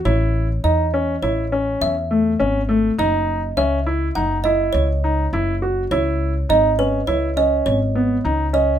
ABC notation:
X:1
M:5/4
L:1/8
Q:1/4=102
K:C#m
V:1 name="Kalimba"
c2 d2 c2 e2 z2 | d2 e2 f d c3 z | c2 d B c d c3 d |]
V:2 name="Grand piano"
E2 D C E C2 A, C A, | D2 C E D E2 D E F | E2 D C E C2 B, D C |]
V:3 name="Upright bass" clef=bass
A,,,2 E,,2 A,,,2 E,,2 G,,,2 | F,,,2 C,,2 F,,,2 C,,2 F,,,2 | C,,2 G,,,2 C,,2 G,,,2 C,,2 |]